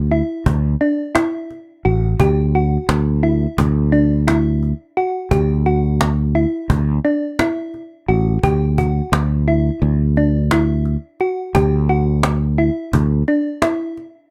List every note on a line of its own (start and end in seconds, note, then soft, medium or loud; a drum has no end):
0.00 0.21 D2 medium
0.11 0.54 E4 medium
0.11 cajon slap soft
0.46 0.74 D2 medium
0.46 cajon bass medium
0.81 1.02 D4 medium
0.81 cajon slap soft
1.15 1.58 E4 medium
1.15 cajon slap medium
1.50 cajon slap soft
1.85 2.13 A1 medium
1.85 2.06 F#4 medium
1.85 cajon slap soft
2.20 2.76 D2 medium
2.20 2.41 G4 medium
2.20 cajon bass medium
2.55 2.98 F#4 medium
2.55 cajon slap soft
2.89 3.45 D2 medium
2.89 cajon slap medium
3.23 3.66 E4 medium
3.23 cajon slap soft
3.58 4.72 D2 medium
3.58 cajon bass medium
3.92 4.14 D4 medium
3.92 cajon slap soft
4.27 4.70 E4 medium
4.27 cajon slap medium
4.63 cajon slap soft
4.97 5.18 F#4 medium
4.97 cajon slap soft
5.31 6.45 D2 medium
5.31 5.53 G4 medium
5.31 cajon bass medium
5.66 6.09 F#4 medium
5.66 cajon slap soft
6.01 cajon slap medium
6.35 6.78 E4 medium
6.35 cajon slap soft
6.70 6.98 D2 medium
6.70 cajon bass medium
7.05 7.26 D4 medium
7.05 cajon slap soft
7.39 7.82 E4 medium
7.39 cajon slap medium
7.74 cajon slap soft
8.09 8.37 A1 medium
8.09 8.30 F#4 medium
8.09 cajon slap soft
8.43 9.00 D2 medium
8.43 8.65 G4 medium
8.43 cajon bass medium
8.78 9.21 F#4 medium
8.78 cajon bass medium
9.12 9.69 D2 medium
9.12 cajon slap loud
9.48 9.90 E4 medium
9.48 cajon slap soft
9.82 10.95 D2 medium
9.82 cajon slap soft
10.16 10.38 D4 medium
10.16 cajon slap soft
10.51 10.94 E4 medium
10.51 cajon slap medium
10.85 cajon slap soft
11.20 11.42 F#4 medium
11.20 cajon slap soft
11.55 12.69 D2 medium
11.55 11.76 G4 medium
11.55 cajon bass medium
11.89 12.32 F#4 medium
11.89 cajon slap soft
12.23 cajon slap loud
12.58 13.01 E4 medium
12.58 cajon slap soft
12.93 13.22 D2 medium
12.93 cajon bass medium
12.93 cajon slap soft
13.28 13.50 D4 medium
13.28 cajon slap soft
13.62 14.05 E4 medium
13.62 cajon slap medium
13.97 cajon slap soft